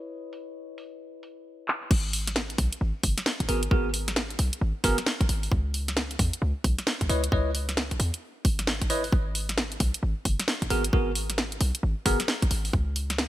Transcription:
Already playing: tine electric piano E4 B4 C#5 D#5
0.33 open hi-hat
0.78 open hi-hat
1.23 open hi-hat
1.68 clap
1.91 808-style bass G#1, kick, crash
2.13 open hi-hat
2.27 snare, closed hi-hat
2.36 snare
2.50 closed hi-hat
2.58 808-style bass B1, kick, open hi-hat
2.73 closed hi-hat
2.81 808-style bass G#1
3.03 808-style bass F#1, kick, open hi-hat
3.18 snare, closed hi-hat
3.26 snare
3.40 808-style bass G#1, kick, closed hi-hat
3.49 808-style bass G#1, tine electric piano B3 F#4 G#4 A#4, open hi-hat
3.63 closed hi-hat
3.71 808-style bass G#1, tine electric piano B3 F#4 G#4 A#4, kick
3.94 open hi-hat
4.08 snare, closed hi-hat
4.16 snare
4.30 closed hi-hat
4.39 808-style bass B1, open hi-hat
4.53 closed hi-hat
4.61 808-style bass G#1
4.84 808-style bass F#1, tine electric piano B3 F#4 G#4 A#4, kick, open hi-hat
4.98 snare, closed hi-hat
5.06 snare
5.21 808-style bass G#1, kick, closed hi-hat
5.29 808-style bass G#1, open hi-hat
5.43 open hi-hat
5.52 808-style bass C#2, kick
5.74 open hi-hat
5.88 snare, closed hi-hat
5.97 snare
6.11 closed hi-hat
6.19 808-style bass E2, kick, open hi-hat
6.33 closed hi-hat
6.42 808-style bass C#2
6.64 808-style bass B1, kick, open hi-hat
6.79 snare, closed hi-hat
6.87 snare
7.01 808-style bass C#2, kick, closed hi-hat
7.09 808-style bass C#2, tine electric piano E4 B4 C#5 D#5, open hi-hat
7.24 closed hi-hat
7.32 808-style bass C#2, tine electric piano E4 B4 C#5 D#5, kick
7.55 open hi-hat
7.69 snare, closed hi-hat
7.77 snare
7.91 kick, closed hi-hat
8.00 808-style bass E2, open hi-hat
8.14 closed hi-hat
8.45 808-style bass G#1, kick, open hi-hat
8.59 snare, closed hi-hat
8.67 snare
8.82 kick, closed hi-hat
8.90 tine electric piano E4 B4 C#5 D#5, open hi-hat
9.04 open hi-hat
9.12 808-style bass G#1, kick
9.35 open hi-hat
9.49 snare, closed hi-hat
9.58 snare
9.72 closed hi-hat
9.80 808-style bass B1, kick, open hi-hat
9.94 closed hi-hat
10.03 808-style bass G#1
10.25 808-style bass F#1, kick, open hi-hat
10.40 snare, closed hi-hat
10.48 snare
10.62 808-style bass G#1, kick, closed hi-hat
10.70 808-style bass G#1, tine electric piano B3 F#4 G#4 A#4, open hi-hat
10.84 closed hi-hat
10.93 808-style bass G#1, tine electric piano B3 F#4 G#4 A#4, kick
11.15 open hi-hat
11.30 snare, closed hi-hat
11.38 snare
11.52 closed hi-hat
11.61 808-style bass B1, open hi-hat
11.75 closed hi-hat
11.83 808-style bass G#1
12.06 808-style bass F#1, tine electric piano B3 F#4 G#4 A#4, kick, open hi-hat
12.20 snare, closed hi-hat
12.28 snare
12.42 808-style bass G#1, kick, closed hi-hat
12.51 808-style bass G#1, open hi-hat
12.65 open hi-hat
12.73 808-style bass C#2, kick
12.96 open hi-hat
13.10 snare, closed hi-hat
13.18 snare

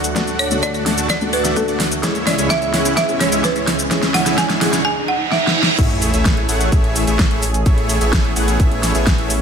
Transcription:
Already playing: analog synth pad D2 D3 A3 F#4, riser
0.04 closed hi-hat, shaker
0.15 grand piano A3 D4 F#4 A4, supersaw synth A3 D4 F#4 D5 F#5, kick, snare, closed hi-hat, shaker
0.28 closed hi-hat, shaker
0.39 marimba C#5, open hi-hat
0.51 grand piano A3 D4 F#4 A4, supersaw synth A3 D4 F#4 D5 F#5, closed hi-hat, shaker
0.63 marimba D5, kick, closed hi-hat, shaker
0.74 closed hi-hat, shaker
0.86 grand piano A3 D4 F#4 A4, supersaw synth A3 D4 F#4 D5 A5, snare, open hi-hat
0.98 closed hi-hat, shaker
1.10 supersaw synth A3 D4 F#4 D5 F#5, marimba D5, kick, snare, closed hi-hat, shaker
1.21 grand piano A3 D4 F#4 A4, closed hi-hat, shaker
1.33 marimba B4, open hi-hat
1.45 supersaw synth A3 D4 F#4 D5 E5, snare, closed hi-hat, shaker
1.56 grand piano A3 D4 F#4 A4, marimba A4, kick, closed hi-hat, shaker
1.68 supersaw synth A3 D4 F#4 D5 F#5, closed hi-hat, shaker
1.80 snare, open hi-hat
1.92 closed hi-hat, shaker
2.03 analog synth pad C#2 C#3 G#3 E4, grand piano G#3 C#4 E4 G#4, supersaw synth G#3 C#4 E4 C#5 E5, kick, snare, closed hi-hat, shaker
2.15 closed hi-hat, shaker
2.27 marimba D5, snare, open hi-hat
2.38 grand piano G#3 C#4 E4 G#4, supersaw synth G#3 C#4 E4 C#5 E5, closed hi-hat, shaker
2.50 marimba E5, kick, snare, closed hi-hat, shaker
2.62 closed hi-hat, shaker
2.73 grand piano G#3 C#4 E4 G#4, supersaw synth G#3 C#4 E4 C#5 F#5, snare, open hi-hat
2.85 closed hi-hat, shaker
2.97 supersaw synth G#3 C#4 E4 C#5 E5, marimba E5, kick, snare, closed hi-hat, shaker
3.08 grand piano G#3 C#4 E4 G#4, closed hi-hat, shaker
3.21 marimba C#5, snare, open hi-hat
3.32 supersaw synth G#3 C#4 E4 C#5 E5, closed hi-hat, shaker
3.43 grand piano G#3 C#4 E4 G#4, marimba B4, kick, snare, closed hi-hat, shaker
3.56 supersaw synth G#3 C#4 E4 C#5 E5, closed hi-hat, shaker
3.67 snare, open hi-hat
3.79 closed hi-hat, shaker
3.90 grand piano G#3 C#4 E4 G#4, supersaw synth G#3 C#4 E4 C#5 E5, kick, snare, closed hi-hat, shaker
4.03 snare, closed hi-hat, shaker
4.14 marimba F#5, snare, open hi-hat
4.26 grand piano G#3 C#4 E4 G#4, supersaw synth G#3 C#4 E4 C#5 E5, snare, closed hi-hat, shaker
4.38 marimba G#5, kick, snare, closed hi-hat, shaker
4.50 snare, closed hi-hat, shaker
4.61 grand piano G#3 C#4 E4 G#4, supersaw synth G#3 C#4 E4 C#5 F#5, snare, open hi-hat
4.73 snare, closed hi-hat, shaker
4.85 marimba G#5, reverse cymbal
5.08 marimba F#5
5.32 marimba E5, snare
5.47 snare
5.63 snare
5.78 detuned saw bass A1, supersaw synth A3 E4 G#4 C#5 E5, analog synth pad A3 C#4 G#4, kick, closed hi-hat, crash, sub drop, shaker
5.90 closed hi-hat
6.02 open hi-hat, shaker
6.14 detuned saw bass A1, supersaw synth A3 E4 G#4 C#5 E5, closed hi-hat, shaker
6.25 kick, snare, closed hi-hat, shaker
6.37 closed hi-hat
6.49 detuned saw bass A1, supersaw synth A3 E4 G#4 C#5 F#5, open hi-hat, shaker
6.61 closed hi-hat, shaker
6.72 detuned saw bass A1, supersaw synth A3 E4 G#4 C#5 E5, kick, closed hi-hat, shaker
6.84 closed hi-hat
6.96 open hi-hat, shaker
7.07 detuned saw bass A1, supersaw synth A3 E4 G#4 C#5 E5, closed hi-hat, shaker
7.19 kick, snare, closed hi-hat, shaker
7.31 detuned saw bass A1, supersaw synth A3 E4 G#4 C#5 E5, closed hi-hat
7.43 open hi-hat, shaker
7.54 closed hi-hat, shaker
7.66 detuned saw bass A1, supersaw synth A3 E4 G#4 C#5 E5, analog synth pad B3, kick, closed hi-hat, shaker
7.78 closed hi-hat
7.89 open hi-hat, shaker
8.01 detuned saw bass A1, supersaw synth A3 E4 G#4 C#5 E5, closed hi-hat, shaker
8.13 kick, snare, closed hi-hat, shaker
8.25 closed hi-hat
8.36 detuned saw bass A1, supersaw synth A3 E4 G#4 C#5 F#5, open hi-hat, shaker
8.48 closed hi-hat, shaker
8.60 detuned saw bass A1, supersaw synth A3 E4 C#5 E5, kick, closed hi-hat, shaker
8.71 closed hi-hat
8.83 snare, open hi-hat, shaker
8.95 detuned saw bass A1, supersaw synth A3 E4 G#4 C#5 E5, closed hi-hat, shaker
9.07 kick, snare, closed hi-hat, shaker
9.18 detuned saw bass A1, supersaw synth A3 E4 G#4 C#5 E5, closed hi-hat
9.30 open hi-hat, shaker

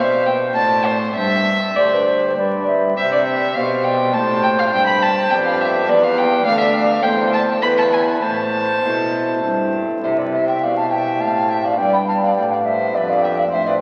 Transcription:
Already playing: pipe organ B2 C4 C5, cello B2, flute C5, violin F5
0.26 violin G5
0.55 cello A2, pipe organ A2 C4 C5, flute D5, violin A5
0.86 violin C5
1.15 cello G2, pipe organ G2, flute C5, violin E5
1.76 cello D2, pipe organ D2 D4 G4 C5, flute C5, violin D5
1.93 flute B4
2.07 flute C5
2.37 cello G2, pipe organ G2 D4 G4 B4, flute D5
2.67 flute E5
2.97 cello C3, pipe organ C3, flute C5, violin E5
3.12 violin D5
3.26 violin E5
3.56 cello B2, pipe organ B2 C4 G4 C5, flute D5, violin F5
3.84 violin G5
4.14 cello A2, pipe organ A2 C4 G4 C5, flute C5, violin A5
4.43 violin G5
4.59 violin F5
4.73 pipe organ G2, cello G2, violin G5
4.87 violin B5
5.02 violin A5
5.30 pipe organ F2 B3 G4 D5, cello F2, violin G5
5.46 violin F5
5.60 violin E5
5.88 pipe organ E2 B3 G4 D5, cello E2, flute B4, violin D5
6.04 violin F5
6.18 violin G5
6.45 pipe organ D2 A3 A4 D5, cello D2, flute D5, violin F5
6.60 violin E5
6.74 violin F5
7.02 pipe organ E2 A3 A4 C5, cello E2, flute C5, violin G5
7.33 violin A5
7.61 pipe organ E2 B3 E4 B4, cello E2, flute B4, violin B5
7.78 violin A5
7.93 violin G#5
8.21 pipe organ A2, cello A2, flute C5, violin A5
8.83 cello B2, pipe organ B2 C4 E4 A4
9.43 pipe organ G2 C4 E4 A4, cello G2
9.99 pipe organ C4 E4 G4, flute E5
10.04 pipe organ C3, cello C3, violin C5
10.19 violin B4, flute D5
10.33 violin C5, flute E5
10.48 violin E5, flute G5
10.62 pipe organ B2, cello B2, violin D5, flute F5
10.77 violin F5, flute A5
10.91 violin E5, flute G5
11.20 pipe organ A2, cello A2, violin F5, flute A5
11.49 violin E5, flute G5
11.64 violin D5, flute F5
11.74 pipe organ B3 D4 G4
11.78 pipe organ G2, cello G2, violin D5, flute G5
11.93 violin G5, flute B5
12.07 violin F5, flute A5
12.22 violin D5, flute F5
12.36 pipe organ A2, cello A2, violin D5, flute G5
12.51 violin D5, flute F5
12.65 violin C5, flute E5
12.94 pipe organ F2, cello F2, violin B4, flute D5
13.10 violin D5, flute F5
13.22 violin E5, flute G5
13.38 violin D5, flute F5
13.47 pipe organ C4 C5
13.51 pipe organ A2, cello A2, violin C5, flute E5
13.67 violin B4, flute D5

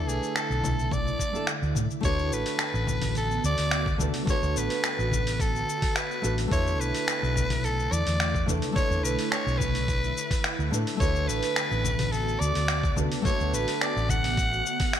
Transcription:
Already playing: ambient pad D3 A3 E4, nylon-string guitar A3 D4 E4 B4
0.07 fingered electric bass B1, soprano saxophone G#4, shaker
0.23 shaker
0.36 soprano saxophone A4, finger snap, shaker
0.50 fingered electric bass B1, shaker
0.64 low conga, shaker
0.79 shaker
0.91 soprano saxophone D5, kick, low conga, shaker
1.08 shaker
1.19 kick, shaker
1.32 nylon-string guitar A3 D4 E4 A4, shaker
1.47 finger snap, shaker
1.62 fingered electric bass D2, shaker
1.75 fingered electric bass A2, low conga, shaker
1.91 shaker
2.01 fingered electric bass D2, ambient pad D3 B3 F#4, nylon-string guitar A3 D4 F#4, kick, open hi-hat, shaker
2.05 nylon-string guitar B4, soprano saxophone C#5
2.19 shaker
2.31 fingered electric bass A1, soprano saxophone B4, shaker
2.46 open hi-hat, shaker
2.59 finger snap, open hi-hat, shaker
2.74 fingered electric bass A1, shaker
2.87 kick, low conga, shaker
3.02 open hi-hat, low conga, shaker
3.15 soprano saxophone A4, open hi-hat, shaker
3.31 shaker
3.44 fingered electric bass D2, soprano saxophone D5, shaker
3.58 open hi-hat, shaker
3.71 finger snap, open hi-hat, shaker
3.86 kick, shaker
3.98 fingered electric bass D2, nylon-string guitar A3 D4 F#4 B4, low conga, shaker
4.14 open hi-hat, shaker
4.25 nylon-string guitar A3 D4, kick, open hi-hat, shaker
4.30 nylon-string guitar F#4 B4, soprano saxophone C#5
4.42 fingered electric bass D2, shaker
4.56 fingered electric bass A1, soprano saxophone B4, shaker
4.70 open hi-hat, shaker
4.84 finger snap, open hi-hat, shaker
4.99 fingered electric bass A1, shaker
5.12 kick, low conga, shaker
5.27 open hi-hat, shaker
5.40 soprano saxophone A4, kick, open hi-hat, shaker
5.56 shaker
5.69 shaker
5.82 kick, open hi-hat, shaker
5.96 soprano saxophone B4, finger snap, open hi-hat, shaker
6.11 shaker
6.22 fingered electric bass A1, nylon-string guitar A3 D4 F#4 B4, shaker
6.38 open hi-hat, shaker
6.48 fingered electric bass E2, nylon-string guitar A3 D4, ambient pad A3 E4, kick, open hi-hat
6.52 nylon-string guitar E4 B4, soprano saxophone C#5, shaker
6.67 shaker
6.80 fingered electric bass B1, soprano saxophone B4, shaker
6.95 open hi-hat, shaker
7.08 finger snap, open hi-hat, shaker
7.23 fingered electric bass B1, shaker
7.36 kick, low conga, shaker
7.50 open hi-hat, low conga, shaker
7.64 soprano saxophone A4, open hi-hat, shaker
7.79 shaker
7.92 fingered electric bass E2, soprano saxophone D5, shaker
8.07 fingered electric bass E2, open hi-hat, shaker
8.20 finger snap, open hi-hat, shaker
8.35 kick, shaker
8.46 fingered electric bass E2, nylon-string guitar A3 D4 E4 B4, low conga, shaker
8.62 open hi-hat, shaker
8.72 nylon-string guitar A3 D4 E4, soprano saxophone C#5, kick, open hi-hat
8.77 nylon-string guitar B4, shaker
8.91 fingered electric bass E2, shaker
9.03 fingered electric bass B1, soprano saxophone B4, shaker
9.19 open hi-hat, shaker
9.31 soprano saxophone C#5, finger snap, open hi-hat, shaker
9.47 fingered electric bass B1, shaker
9.58 soprano saxophone B4, kick, low conga, shaker
9.75 open hi-hat, shaker
9.88 kick, open hi-hat, shaker
10.04 shaker
10.17 shaker
10.31 kick, open hi-hat, shaker
10.44 finger snap, open hi-hat, shaker
10.59 fingered electric bass D2, shaker
10.71 fingered electric bass A2, nylon-string guitar A3 D4 E4 B4, shaker
10.87 open hi-hat, shaker
10.97 fingered electric bass D2, nylon-string guitar A3 D4, soprano saxophone C#5, kick, open hi-hat
11.01 ambient pad B3 F#4, nylon-string guitar F#4 B4, shaker
11.16 shaker
11.28 fingered electric bass A1, soprano saxophone B4, shaker
11.43 open hi-hat, shaker
11.56 finger snap, open hi-hat, shaker
11.71 fingered electric bass A1, shaker
11.84 kick, low conga, shaker
11.99 open hi-hat, low conga, shaker
12.11 soprano saxophone A4, open hi-hat, shaker
12.28 shaker
12.40 fingered electric bass D2, soprano saxophone D5, shaker
12.55 fingered electric bass D2, open hi-hat, shaker
12.68 finger snap, open hi-hat, shaker
12.84 kick, shaker
12.96 fingered electric bass D2, nylon-string guitar A3 D4 F#4 B4, low conga, shaker
13.12 open hi-hat, shaker
13.22 nylon-string guitar A3 D4, soprano saxophone C#5, kick, open hi-hat
13.26 nylon-string guitar F#4 B4, shaker
13.40 fingered electric bass D2, shaker
13.53 fingered electric bass A1, soprano saxophone B4, shaker
13.68 open hi-hat, shaker
13.81 soprano saxophone D5, finger snap, open hi-hat, shaker
13.96 fingered electric bass A1, shaker
14.09 soprano saxophone F#5, kick, low conga, shaker
14.24 open hi-hat, shaker
14.37 kick, open hi-hat, shaker
14.53 shaker
14.66 shaker
14.80 kick, open hi-hat, shaker
14.93 finger snap, open hi-hat, shaker

